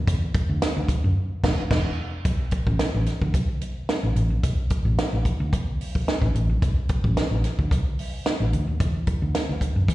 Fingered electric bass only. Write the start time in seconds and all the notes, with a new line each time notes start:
0.08 E2
0.49 D2
0.77 D2
1.04 F#2
1.44 E1
1.71 E1
2.25 B1
2.67 A1
2.94 A1
3.21 D2
3.34 B1
4.03 A1
4.16 A1
4.30 A#1
4.44 B1
4.85 A1
5.13 A1
5.40 D2
5.53 B1
6.22 A1
6.35 A1
6.50 A#1
6.62 B1
7.04 A1
7.31 A1
7.59 D2
7.71 B1
8.40 A1
8.53 D2
8.67 D#2
8.80 E2
9.22 D2
9.49 D2
9.76 F#2
9.88 E3